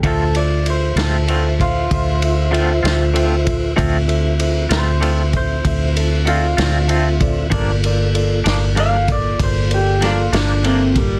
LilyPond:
<<
  \new Staff \with { instrumentName = "Tine electric piano" } { \time 12/8 \key d \minor \tempo 4. = 64 <f' a' c'' e''>8 <f' a' c'' e''>8 <f' a' c'' e''>8 <f' a' c'' e''>8 <f' a' c'' e''>8 <f' a' c'' e''>8 <f' a' c'' e''>8 <f' a' c'' e''>8 <f' a' c'' e''>8 <f' a' c'' e''>8 <f' a' c'' e''>8 <f' a' c'' e''>8 | <f' a' c'' e''>8 <f' a' c'' e''>8 <f' a' c'' e''>8 <f' a' c'' e''>8 <f' a' c'' e''>8 <f' a' c'' e''>8 <f' a' c'' e''>8 <f' a' c'' e''>8 <f' a' c'' d''>8 <f' a' c'' d''>8 <f' a' c'' e''>8 <f' a' c'' d''>8 | <f' a' bes' d''>8 <f' a' bes' d''>8 <f' a' bes' d''>8 <f' a' bes' d''>8 <f' a' bes' d''>8 <f' a' bes' d''>8 <f' a' bes' d''>8 <f' a' bes' d''>8 <f' a' bes' d''>8 <f' a' bes' d''>8 <f' a' bes' e''>8 <f' a' bes' d''>8 | }
  \new Staff \with { instrumentName = "Clean electric guitar" } { \time 12/8 \key d \minor a'8 d''8 c''8 a'4 f'2. r8 | r4. c''4 c''4 a'8 f'2~ | f'4 r4 f''8 d''8 c''8 g'8 f'8 d'8 c'8 g8 | }
  \new Staff \with { instrumentName = "Tonewheel organ" } { \time 12/8 \key d \minor <f' c'' e''>1. | <c' f' e''>1. | <bes f' a'>1. | }
  \new Staff \with { instrumentName = "Clean electric guitar" } { \time 12/8 \key d \minor <d a c' f'>8 r4 <a c' f'>8 <d a c' f'>8 r4. <d a c' f'>8 <a c' f'>8 <d a c' f'>8 r8 | <d a c' f'>8 r4 <a c' f'>8 <d a c' f'>8 r4. <d a c' f'>8 <a c' f'>8 <d a c' f'>8 r8 | <g, f bes d'>8 r4 <f bes d'>8 <g, f bes d'>8 r4. <g, f bes d'>8 <f bes d'>8 <g, f bes d'>8 r8 | }
  \new Staff \with { instrumentName = "Fingered electric bass" } { \clef bass \time 12/8 \key d \minor d,4. d,4. d,4. d,4. | d,4. d,4. d,4. d,4. | g,,4. g,,4. g,,4. g,,4. | }
  \new DrumStaff \with { instrumentName = "Drums" } \drummode { \time 12/8 <bd cymr>8 cymr8 cymr8 <cymr sn>8 cymr8 <bd cymr>8 <bd cymr>8 cymr8 cymr8 <cymr sn>8 cymr8 <bd cymr>8 | <bd cymr>8 cymr8 cymr8 <cymr sn>8 cymr8 <bd cymr>8 <bd cymr>8 cymr8 cymr8 <cymr sn>8 cymr8 <bd cymr>8 | <bd cymr>8 cymr8 cymr8 <cymr sn>8 cymr8 <bd cymr>8 <bd cymr>8 cymr8 <cymr sn>8 <cymr sn>8 cymr8 <bd cymr>8 | }
>>